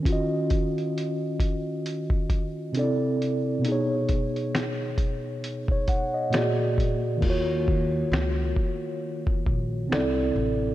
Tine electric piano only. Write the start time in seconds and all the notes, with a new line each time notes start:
0.00 D#3 C#4
0.06 F4 F#4
0.13 D#5
2.72 C3 C4 D4
2.77 A4 D5
2.82 E4
3.59 B2 B3
3.65 D#4 G#4
3.72 C#5
5.72 C#5
5.89 F#5
6.14 D#5
6.30 A#2 A#3 F#4
6.35 G#4 D5
7.17 D#3 A#3
7.24 F4 F#4
7.30 C#5
9.87 C3 C4 D4
9.93 A4 D5
9.98 E4